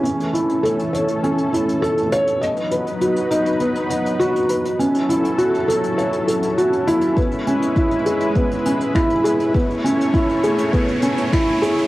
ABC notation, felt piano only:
X:1
M:4/4
L:1/8
Q:1/4=101
K:Alyd
V:1 name="Felt piano"
C E A c C E A c | d B F D B, D F B | C E F A c A F E | B, C E G B, C E G |
B, C E G B, C E G |]